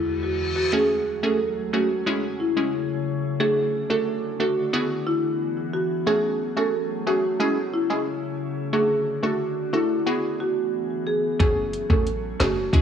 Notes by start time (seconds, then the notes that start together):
Already playing: E2 E3 G#3 B3 E4 F#4 G#4, reverse cymbal
0.23 F#4
0.56 F#4
0.73 F#3 A3 C#4 F#4 G#4
1.23 A3 C#4 F#4 G#4 A4
1.73 A3 C#4 F#4 G#4
2.06 C#3 G#3 C#4 E4 G#4
2.40 E4
2.56 G#3 C#4 E4 G#4
3.40 D3 A3 D4 F#4 G#4
3.90 A3 D4 F#4 A4
4.40 A3 D4 F#4 A4
4.73 E3 B3 E4 F#4 G#4
5.07 E4
5.73 F#4
6.06 F#3 A3 C#4 F#4 G#4
6.56 A3 C#4 F#4 G#4 A4
7.07 A3 C#4 F#4 G#4
7.40 C#3 G#3 C#4 E4 G#4
7.74 E4
7.90 G#3 C#4 E4 G#4
8.73 D3 A3 D4 F#4 G#4
9.23 A3 D4 F#4 A4
9.73 A3 D4 E4 F#4 A4
10.06 E3 B3 E4 F#4 G#4
10.40 F#4
11.07 G#4
11.39 F#1 F#3 A3 C#4 F#4 G#4, kick, closed hi-hat
11.73 closed hi-hat
11.90 A1 A3 C#4 F#4 G#4 A4, kick
12.07 closed hi-hat
12.40 F#1 A3 C#4 F#4 G#4, cross-stick, snare, closed hi-hat
12.73 C#2 C#3 G#3 C#4 E4 G#4, kick, closed hi-hat